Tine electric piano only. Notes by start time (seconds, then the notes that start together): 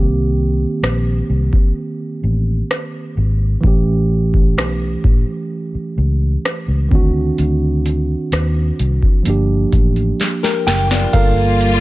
Already playing: D#3 A#3 C4 G4
3.61 E3 A3
3.65 C#4 G4
6.89 D#3 C4
6.93 D4 F#4
9.23 F3 A#3
9.28 D4 G4
10.67 A#4 G5
11.13 A#3 F4 A4 A#4 F5